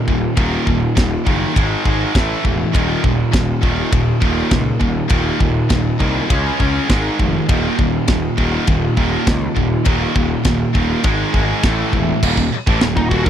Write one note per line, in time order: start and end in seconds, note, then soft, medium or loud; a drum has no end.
0.00 0.33 D#2 medium
0.00 0.34 A#2 medium
0.00 0.35 D#3 medium
0.08 0.26 D#1 medium
0.08 0.34 D#2 medium
0.08 0.34 A#2 medium
0.08 kick medium
0.37 0.56 D#1 medium
0.37 0.65 D#2 medium
0.37 0.65 A#2 medium
0.37 0.65 D#3 medium
0.37 kick loud
0.37 ride bell medium
0.66 0.85 D#1 medium
0.66 0.93 D#2 medium
0.66 0.94 A#2 medium
0.66 kick medium
0.95 1.15 D#1 medium
0.95 1.22 D#2 medium
0.95 1.23 A#2 medium
0.95 kick loud
0.95 snare loud
0.95 ride bell medium
1.25 1.45 F#1 medium
1.25 1.54 D#2 medium
1.25 1.54 A#2 loud
1.25 1.54 D#3 loud
1.25 kick medium
1.55 1.75 G#1 medium
1.55 1.83 G#2 medium
1.55 1.83 D#3 medium
1.55 1.84 G#3 medium
1.55 kick loud
1.55 ride bell medium
1.84 2.04 G#1 medium
1.84 2.13 G#2 medium
1.84 2.13 D#3 medium
1.84 2.13 G#3 medium
1.84 kick medium
2.15 2.33 A1 medium
2.15 2.43 A2 medium
2.15 2.43 E3 medium
2.15 2.43 A3 medium
2.15 kick loud
2.15 snare loud
2.15 ride bell medium
2.44 2.63 E1 medium
2.44 2.71 A2 medium
2.44 2.71 E3 medium
2.44 kick medium
2.73 2.93 D#1 medium
2.73 3.01 D#2 medium
2.73 3.02 A#2 medium
2.73 3.02 D#3 medium
2.73 kick loud
2.73 ride bell medium
3.03 3.22 D#1 medium
3.03 3.30 D#2 medium
3.03 3.30 A#2 medium
3.03 kick medium
3.33 3.52 D#1 medium
3.33 3.60 D#2 medium
3.33 3.60 A#2 medium
3.33 kick loud
3.33 snare loud
3.33 ride bell medium
3.62 3.81 D#1 medium
3.62 3.90 D#2 medium
3.62 3.90 A#2 loud
3.62 3.91 D#3 loud
3.62 kick medium
3.91 4.11 D#1 medium
3.91 4.19 D#2 medium
3.91 4.19 A#2 medium
3.91 5.09 D#3 medium
3.91 kick loud
3.91 ride bell medium
4.20 4.41 D#1 medium
4.20 4.49 D#2 medium
4.20 4.50 A#2 medium
4.20 4.50 D#3 loud
4.20 kick medium
4.51 4.70 C#2 medium
4.51 4.78 D#2 medium
4.51 4.78 A#2 medium
4.51 kick loud
4.51 snare loud
4.51 ride bell medium
4.80 4.99 D#1 medium
4.80 5.07 D#2 medium
4.80 5.07 A#2 medium
4.80 kick medium
5.09 5.30 D#1 medium
5.09 5.38 D#2 medium
5.09 5.38 A#2 medium
5.09 5.39 D#3 medium
5.09 kick loud
5.09 ride bell medium
5.40 5.59 D#1 medium
5.40 5.67 D#2 medium
5.40 5.67 A#2 medium
5.40 kick medium
5.69 5.89 D#1 medium
5.69 5.97 D#2 medium
5.69 5.97 A#2 medium
5.69 kick loud
5.69 snare loud
5.69 ride bell medium
5.99 6.19 C2 medium
5.99 6.28 D#2 loud
5.99 6.28 A#2 loud
5.99 6.28 D#3 loud
5.99 kick medium
6.29 6.49 C#2 medium
6.29 6.57 C#3 medium
6.29 6.58 G#3 medium
6.29 6.58 C#4 loud
6.29 kick loud
6.29 ride bell medium
6.59 6.78 C#2 loud
6.59 6.87 C#3 medium
6.59 6.87 G#3 medium
6.59 6.88 C#4 loud
6.59 kick medium
6.89 7.08 G#1 medium
6.89 7.17 G#2 medium
6.89 7.17 D#3 medium
6.89 7.17 G#3 medium
6.89 kick loud
6.89 snare loud
6.89 ride bell medium
7.19 7.38 F1 medium
7.19 7.46 G#2 medium
7.19 7.46 D#3 medium
7.19 kick medium
7.49 7.67 D#1 medium
7.49 7.77 D#2 medium
7.49 7.77 A#2 medium
7.49 7.77 D#3 medium
7.49 kick loud
7.49 ride bell medium
7.79 7.97 D#1 medium
7.79 8.05 D#2 medium
7.79 8.05 A#2 loud
7.79 kick medium
8.08 8.27 D#1 medium
8.08 8.35 D#2 medium
8.08 8.35 A#2 medium
8.08 kick loud
8.08 snare loud
8.08 ride bell medium
8.37 8.56 D#1 medium
8.37 8.65 D#2 medium
8.37 8.66 A#2 medium
8.37 8.66 D#3 loud
8.37 kick medium
8.67 8.86 D#1 medium
8.67 8.94 D#2 medium
8.67 8.94 A#2 medium
8.67 9.85 D#3 medium
8.67 kick loud
8.67 ride bell medium
8.97 9.16 D#1 medium
8.97 9.25 D#2 medium
8.97 9.25 A#2 medium
8.97 9.25 D#3 medium
8.97 kick medium
9.27 9.46 C#2 medium
9.27 9.53 D#2 medium
9.27 9.53 A#2 medium
9.27 kick loud
9.27 snare loud
9.27 ride bell medium
9.55 9.75 D#1 medium
9.55 9.82 D#2 medium
9.55 9.83 A#2 medium
9.55 kick medium
9.85 10.04 D#1 medium
9.85 10.13 D#2 medium
9.85 10.13 A#2 medium
9.85 10.14 D#3 loud
9.85 kick loud
9.85 ride bell medium
10.15 10.34 D#1 medium
10.15 10.42 D#2 medium
10.15 10.42 A#2 medium
10.15 kick medium
10.45 10.64 D#1 medium
10.45 10.72 D#2 medium
10.45 10.72 A#2 medium
10.45 kick loud
10.45 snare loud
10.45 ride bell medium
10.74 10.93 D#1 loud
10.74 11.02 D#2 loud
10.74 11.02 A#2 medium
10.74 11.03 D#3 loud
10.74 kick medium
11.04 11.23 G#1 medium
11.04 11.32 G#2 medium
11.04 11.32 D#3 medium
11.04 11.32 G#3 loud
11.04 kick loud
11.04 ride bell medium
11.33 11.52 G#1 medium
11.33 11.61 G#2 medium
11.33 11.62 D#3 medium
11.33 11.62 G#3 loud
11.33 kick medium
11.63 11.82 A1 medium
11.63 11.91 A2 medium
11.63 11.91 E3 medium
11.63 11.92 A3 medium
11.63 kick loud
11.63 snare loud
11.63 ride bell medium
11.93 12.11 E1 medium
11.93 12.20 A2 medium
11.93 12.20 E3 medium
11.93 kick medium
12.23 12.37 D#1 medium
12.23 12.37 D#2 medium
12.23 12.37 A#2 loud
12.23 kick loud
12.23 crash loud
12.23 china medium
12.37 12.51 D#1 medium
12.37 12.51 D#2 medium
12.37 12.53 A#2 medium
12.37 kick medium
12.52 muted picked electric bass stroke soft
12.52 muted distorted electric guitar stroke medium
12.52 muted overdriven electric guitar stroke medium
12.67 12.81 A1 medium
12.67 12.81 A2 medium
12.67 12.81 E3 loud
12.67 kick loud
12.81 12.95 D#1 medium
12.81 12.96 D#2 medium
12.81 12.96 A#2 medium
12.81 snare loud
12.81 china medium
12.97 13.11 D#1 medium
12.97 13.10 D#2 medium
12.97 13.11 A#2 medium
12.97 13.09 D#4 medium
12.97 kick medium
13.10 13.25 D#1 medium
13.10 13.25 D#2 medium
13.10 13.26 A#2 loud
13.10 13.25 F#4 loud
13.10 kick medium
13.25 13.30 D#1 medium
13.25 13.30 D#2 medium
13.25 13.30 A#2 medium
13.25 13.30 A#4 medium
13.25 kick medium